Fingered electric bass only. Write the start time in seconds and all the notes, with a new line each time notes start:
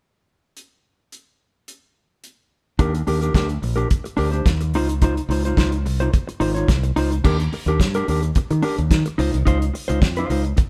2.79 D#2
3.07 D#2
3.34 D2
3.62 A#1
4.18 D2
4.46 D#2
4.73 C#2
5.29 C#2
5.57 C#2
5.85 C2
6.41 G#1
6.69 C2
6.96 C#2
7.25 D#2
7.66 D#2
7.79 G2
8.08 D#2
8.36 muted fingered electric bass stroke
8.51 D#3
8.78 D#2
8.91 D#3
9.19 C#2
9.34 C2
9.47 C#2
9.90 C#2
10.02 F2
10.30 C#2
10.58 muted fingered electric bass stroke